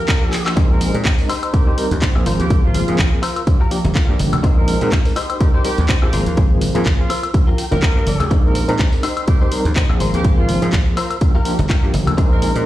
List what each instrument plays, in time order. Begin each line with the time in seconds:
Already playing: horn section A#4
0.08 clean electric guitar F4 G4 A#4, kick, clap, closed hi-hat
0.21 reed electric piano F3 A#3 D4 G4
0.32 muted clean electric guitar stroke, clap, open hi-hat
0.46 muted clean electric guitar stroke, clap, open hi-hat, high woodblock
0.56 slap bass A#1, reed electric piano G#3 C4 D#4 A#4, clean electric guitar D#4 G#4 C5, kick, closed hi-hat
0.70 horn section A#4, shaker
0.81 open hi-hat, low conga
0.94 slap bass A#2, reed electric piano G#3 C4 D#4 A#4, closed hi-hat, shaker
1.05 slap bass A#1, kick, clap, closed hi-hat
1.18 reed electric piano G#3 C4 D#4 A#4, open hi-hat
1.29 clean electric guitar D#4 G4 C5, open hi-hat, high woodblock
1.42 closed hi-hat, high woodblock, shaker
1.53 reed electric piano G3 C4 D#4 A#4, horn section G4, kick, closed hi-hat
1.67 clean electric guitar D#4 G4 C5, horn section G4, shaker
1.77 reed electric piano G3 C4 D#4 A#4, open hi-hat
1.91 slap bass D#2, closed hi-hat, low conga, shaker
2.01 clean electric guitar D#4 G4 C5, kick, clap, closed hi-hat, shaker
2.15 slap bass A#1, reed electric piano F3 A#3 C4 G#4, high woodblock, shaker
2.26 slap bass G#1, clean electric guitar F4 A#4 C5, open hi-hat
2.39 slap bass D#2, horn section G4, closed hi-hat, shaker
2.50 slap bass G#1, reed electric piano F3 A#3 C4 G#4, kick, closed hi-hat
2.63 horn section F4, shaker
2.74 open hi-hat, high conga, low conga
2.88 slap bass G#2, reed electric piano F3 A#3 C4 G#4, closed hi-hat, shaker
2.99 slap bass G#1, kick, clap, closed hi-hat
3.12 reed electric piano F3 A#3 C4 G#4, shaker
3.22 clean electric guitar F4 A#4 C5, open hi-hat, high woodblock
3.36 closed hi-hat, high woodblock, shaker
3.47 reed electric piano F3 A#3 D4 G4, kick, closed hi-hat
3.60 clean electric guitar F4 G4 A#4, shaker
3.71 reed electric piano F3 A#3 D4 G4, open hi-hat
3.84 slap bass G1, closed hi-hat, low conga, shaker
3.95 clean electric guitar F4 G4 A#4, kick, clap, closed hi-hat, shaker
4.08 slap bass G2, reed electric piano F3 A#3 D4 G4, shaker
4.19 slap bass G1, muted clean electric guitar stroke, open hi-hat, high conga
4.33 slap bass D2, muted clean electric guitar stroke, closed hi-hat, high conga, high woodblock, shaker
4.43 slap bass A#1, reed electric piano G#3 C4 D#4 A#4, clean electric guitar D#4 G#4 C5, kick, closed hi-hat, shaker
4.57 horn section A#4, shaker
4.68 open hi-hat, low conga
4.81 slap bass A#2, reed electric piano G#3 C4 D#4 A#4, closed hi-hat, shaker
4.92 slap bass A#1, kick, clap, closed hi-hat
5.05 reed electric piano G#3 C4 D#4 A#4, open hi-hat
5.16 clean electric guitar D#4 G4 C5, open hi-hat, high woodblock
5.29 closed hi-hat, high woodblock, shaker
5.40 reed electric piano G3 C4 D#4 A#4, horn section G4, kick, closed hi-hat
5.54 clean electric guitar D#4 G4 C5, horn section G4, shaker
5.64 reed electric piano G3 C4 D#4 A#4, horn section G4, open hi-hat
5.78 slap bass D#2, closed hi-hat, low conga, shaker
5.88 clean electric guitar D#4 G4 C5, kick, clap, closed hi-hat
6.02 slap bass A#1, reed electric piano F3 A#3 C4 G#4, horn section G4, high woodblock, shaker
6.13 slap bass G#1, clean electric guitar F4 A#4 C5, open hi-hat
6.26 slap bass D#2, closed hi-hat, shaker
6.37 slap bass G#1, reed electric piano F3 A#3 C4 G#4, kick, closed hi-hat, shaker
6.50 shaker
6.61 open hi-hat, high conga, low conga
6.75 slap bass G#2, reed electric piano F3 A#3 C4 G#4, closed hi-hat, shaker
6.86 slap bass G#1, kick, clap, closed hi-hat
6.99 reed electric piano F3 A#3 C4 G#4, horn section F4, shaker
7.10 clean electric guitar F4 A#4 C5, open hi-hat, high woodblock
7.23 closed hi-hat, high woodblock, shaker
7.33 reed electric piano F3 A#3 D4 G4, kick, closed hi-hat
7.47 clean electric guitar F4 G4 A#4, shaker
7.58 clean electric guitar G5, open hi-hat
7.71 slap bass G1, reed electric piano F3 A#3 D4 G4, horn section A#4, closed hi-hat, low conga, shaker
7.82 clean electric guitar F4 G4 C5 F5, kick, clap, closed hi-hat
7.95 slap bass G2, reed electric piano F3 A#3 D4 A#4, shaker
8.06 slap bass G1, clean electric guitar D5, muted clean electric guitar stroke, open hi-hat, high conga
8.19 slap bass D2, muted clean electric guitar stroke, closed hi-hat, high conga, high woodblock, shaker
8.30 slap bass A#1, reed electric piano G#3 C4 D#4 A#4, clean electric guitar D#4 G#4 C5, kick, closed hi-hat
8.44 horn section A#4, shaker
8.55 open hi-hat, low conga
8.68 slap bass A#2, reed electric piano G#3 C4 D#4 A#4, closed hi-hat, shaker
8.79 slap bass A#1, kick, clap, closed hi-hat
8.92 reed electric piano G#3 C4 D#4 A#4, open hi-hat, shaker
9.03 clean electric guitar D#4 G4 C5, open hi-hat, high woodblock
9.17 closed hi-hat, high woodblock, shaker
9.27 reed electric piano G3 C4 D#4 A#4, horn section G4, kick, closed hi-hat, shaker
9.41 clean electric guitar D#4 G4 C5, horn section G4, shaker
9.52 reed electric piano G3 C4 D#4 A#4, open hi-hat
9.65 slap bass D#2, closed hi-hat, low conga, shaker
9.76 clean electric guitar D#4 G4 C5, kick, clap, closed hi-hat
9.89 slap bass A#1, reed electric piano F3 A#3 C4 G#4, high woodblock, shaker
10.00 slap bass G#1, clean electric guitar F4 A#4 C5, open hi-hat
10.14 slap bass D#2, horn section G4, closed hi-hat, shaker
10.24 slap bass G#1, reed electric piano F3 A#3 C4 G#4, kick, closed hi-hat, shaker
10.37 horn section F4, shaker
10.48 open hi-hat, high conga, low conga
10.62 slap bass G#2, reed electric piano F3 A#3 C4 G#4, closed hi-hat, shaker
10.73 slap bass G#1, kick, clap, closed hi-hat
10.86 reed electric piano F3 A#3 C4 G#4, shaker
10.97 clean electric guitar F4 A#4 C5, open hi-hat, high woodblock
11.10 closed hi-hat, high woodblock, shaker
11.21 reed electric piano F3 A#3 D4 G4, kick, closed hi-hat, shaker
11.35 clean electric guitar F4 G4 A#4, shaker
11.45 reed electric piano F3 A#3 D4 G4, open hi-hat
11.59 slap bass G1, closed hi-hat, low conga, shaker
11.69 clean electric guitar F4 G4 A#4, kick, clap, closed hi-hat, shaker
11.83 slap bass G2, reed electric piano F3 A#3 D4 G4, shaker
11.93 slap bass G1, muted clean electric guitar stroke, open hi-hat, high conga
12.07 slap bass D2, muted clean electric guitar stroke, closed hi-hat, high conga, high woodblock, shaker
12.17 slap bass A#1, reed electric piano G#3 C4 D#4 A#4, clean electric guitar D#4 G#4 C5, kick, closed hi-hat, shaker
12.31 horn section A#4, shaker
12.42 open hi-hat, low conga
12.55 slap bass A#2, reed electric piano G#3 C4 D#4 A#4, closed hi-hat, shaker